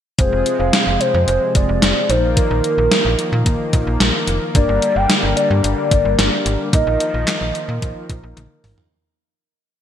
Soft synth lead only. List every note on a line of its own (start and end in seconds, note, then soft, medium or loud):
0.19 0.57 C5 loud
0.59 1.02 F5 loud
1.00 1.27 C5 loud
1.27 1.53 C5 loud
1.55 2.11 D5 loud
2.09 2.38 C5 medium
2.37 3.46 A#4 medium
4.55 4.98 D5 loud
4.96 5.36 G5 loud
5.37 5.49 D5 medium
5.64 6.42 D5 medium
6.73 7.78 D#5 loud